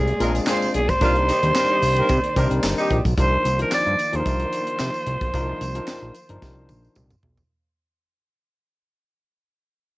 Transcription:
Already playing: C2 C3 G#3 A#3 G#4 D5
0.08 closed hi-hat
0.20 A#1 G#3 A#3 C4 D4 F4 G#4 A#4, closed hi-hat, tambourine
0.35 closed hi-hat, tambourine
0.47 C4 F4 G#4 C5, snare, clap, tambourine
0.62 tambourine
0.74 B1 G#4, closed hi-hat
0.89 C5, kick, closed hi-hat, tambourine
1.01 C2 D#3 F3 G3 A#3 C4 D4 D#4 F4 A#4, kick, closed hi-hat, tambourine
1.15 closed hi-hat
1.29 G3 D#4 G4, closed hi-hat, tambourine
1.42 D#2 G3 C4 D4 D#4 C5, closed hi-hat
1.55 A#3 D#4 G4 A#4, snare, clap, tambourine
1.71 G3 D#4 G4
1.82 C2, open hi-hat, tambourine
1.96 A#3 D#4 G4 A#4, closed hi-hat
2.09 C3, kick, closed hi-hat, tambourine
2.24 closed hi-hat
2.36 C3 G3 A#3 C4 D4 D#4 G4 A#4, kick, closed hi-hat, tambourine
2.51 C2, closed hi-hat
2.63 G1, snare, clap, tambourine
2.78 G3 D#4 G4, tambourine
2.90 A#1, kick, closed hi-hat
3.05 B1, kick, closed hi-hat, tambourine
3.17 C2 D#3 F3 A#3 D4 D#4 F4 A#4 C5, kick, closed hi-hat, tambourine
3.45 C2, closed hi-hat, tambourine
3.59 F3 D4 D#4 A#4 C5, closed hi-hat
3.72 D5, snare, clap, tambourine
3.86 G2, closed hi-hat
3.99 closed hi-hat, tambourine
4.12 D#2 F3 D4 D#4 G#4 C5, closed hi-hat
4.20 A#4
4.26 C2, kick, closed hi-hat, tambourine
4.40 closed hi-hat
4.53 closed hi-hat, tambourine
4.67 closed hi-hat
4.79 C3, snare, clap, tambourine
4.94 tambourine
5.07 C2, closed hi-hat
5.21 B1, kick, closed hi-hat
5.34 C2 F3 D4 D#4 A#4, kick, closed hi-hat, tambourine
5.61 C2, closed hi-hat, tambourine
5.75 F3 D4 D#4 A#4, closed hi-hat
5.88 snare, clap, tambourine
6.02 A#1
6.15 closed hi-hat, tambourine
6.29 G1 F3 D4 D#4 A#4, closed hi-hat
6.42 C2, kick, snare, tambourine
6.69 A#1, high tom, tambourine
6.85 tambourine
6.96 C2, mid tom, tambourine
7.10 mid tom, tambourine
7.23 B1, floor tom
7.38 floor tom, tambourine

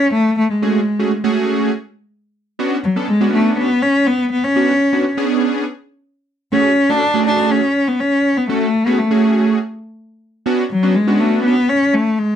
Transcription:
Already playing: C#4
0.13 A3
0.38 A3
0.50 G#3
0.62 A3 C#4 F#4 G#4
0.99 A3 C#4 F#4 G#4
1.24 A3 C#4 F#4 G#4
2.59 B3 C#4 D4 F#4
2.84 F#3
2.96 B3 C#4 D4 A4
3.08 G#3
3.21 B3 C#4 D4 F#4
3.33 A3
3.58 B3
3.82 C#4
4.07 B3
4.31 B3
4.44 C#4
4.56 B3 C#4 D4 F#4
4.93 B3 C#4 D4 F#4
5.17 B3 C#4 D4 G#4
6.52 A3 C#4 F#4 G#4
6.89 A3 C#4 D4 F#4 A4
7.14 A3 C#4 F#4 G#4
7.27 D4
7.51 C#4
7.88 B3
8.00 C#4
8.37 B3
8.49 A3 C#4 F#4 A4
8.86 A3 B3 C#4 F#4 G#4
8.99 A3
9.11 A3 C#4 F#4 G#4
10.46 B3 C#4 D4 F#4
10.71 F#3
10.83 B3 C#4 D4 F#4
10.95 G#3
11.07 B3 C#4 D4 F#4
11.20 A3
11.44 B3
11.69 C#4
11.94 A3
12.18 G#3

